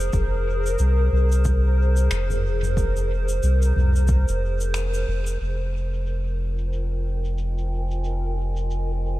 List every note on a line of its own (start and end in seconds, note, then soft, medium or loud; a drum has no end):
0.00 6.27 G#4 medium
0.00 5.39 A#4 medium
0.00 8.00 A#4 medium
0.00 9.20 C5 medium
0.00 shaker medium
0.13 0.77 F1 loud
0.13 kick loud
0.13 shaker medium
0.66 shaker medium
0.79 1.09 C2 medium
0.79 shaker medium
1.12 2.08 C2 medium
1.32 shaker medium
1.45 kick loud
1.45 shaker medium
1.97 shaker medium
2.11 3.40 F1 loud
2.11 finger snap medium
2.11 shaker medium
2.30 mid tom medium
2.30 shaker soft
2.63 mid tom medium
2.63 shaker medium
2.77 kick loud
2.77 shaker medium
2.97 shaker soft
3.29 shaker medium
3.43 3.73 C2 medium
3.43 shaker medium
3.62 shaker medium
3.76 4.25 C2 medium
3.76 mid tom medium
3.96 shaker medium
4.08 kick loud
4.08 shaker medium
4.28 5.05 F1 medium
4.28 shaker soft
4.61 shaker medium
4.74 finger snap medium
4.74 shaker medium
4.94 shaker medium
5.08 5.37 F1 medium
5.27 shaker medium
5.40 9.20 F1 medium
5.40 9.20 F4 medium
5.40 9.20 A#4 medium
5.40 shaker medium
5.74 9.20 D#5 medium
5.89 9.20 G5 medium
5.93 shaker soft
6.06 shaker medium
6.42 9.20 G#5 medium
6.58 shaker soft
6.73 shaker medium
7.25 shaker medium
7.38 shaker medium
7.58 shaker soft
7.91 shaker soft
8.04 shaker medium
8.56 shaker soft
8.71 shaker medium